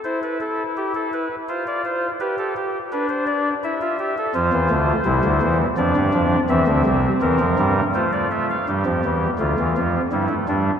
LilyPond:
<<
  \new Staff \with { instrumentName = "Pipe organ" } { \time 3/4 \key g \dorian \tempo 4 = 84 << { c''16 b'16 a'8 g'16 a'16 b'8 c''16 d''16 c''8 | b'16 a'16 g'8 b'16 c''16 d''8 e''4 | c''2 d''4 | e''4 bes'4 c''16 d''16 e''16 f''16 |
r2. | } \\ { e'2 f'4 | g'4 d'4 e'16 f'16 g'16 a'16 | f'4 e'4 d'4 | c'2 f'4 |
g'4 f'4 e'8 d'8 | } >> }
  \new Staff \with { instrumentName = "Pipe organ" } { \clef bass \time 3/4 \key g \dorian r2. | r2. | <f, f>16 <e, e>16 <d, d>8 <c, c>16 <d, d>16 <e, e>8 <f, f>16 <g, g>16 <f, f>8 | <e, e>16 <d, d>16 <c, c>8 <e, e>16 <f, f>16 <g, g>8 a4 |
<g, g>16 <f, f>16 <e, e>8 <d, d>16 <e, e>16 <f, f>8 <g, g>16 a16 <g, g>8 | }
>>